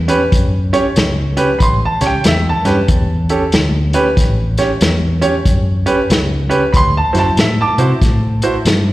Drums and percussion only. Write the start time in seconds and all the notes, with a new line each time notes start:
0.08 closed hi-hat
0.32 kick, closed hi-hat
0.74 closed hi-hat
0.96 snare, closed hi-hat
1.37 closed hi-hat
1.60 kick, closed hi-hat
2.01 snare, closed hi-hat
2.24 snare, closed hi-hat
2.65 snare, closed hi-hat
2.88 kick, closed hi-hat
3.29 closed hi-hat
3.52 snare, closed hi-hat
3.93 closed hi-hat
4.17 kick, snare, closed hi-hat
4.58 snare, closed hi-hat
4.81 snare, closed hi-hat
5.22 closed hi-hat
5.45 kick, closed hi-hat
5.86 closed hi-hat
6.10 snare, closed hi-hat
6.51 closed hi-hat
6.74 kick, closed hi-hat
7.15 snare, closed hi-hat
7.37 snare, closed hi-hat
7.78 closed hi-hat
8.02 kick, snare, closed hi-hat
8.42 closed hi-hat
8.65 snare, closed hi-hat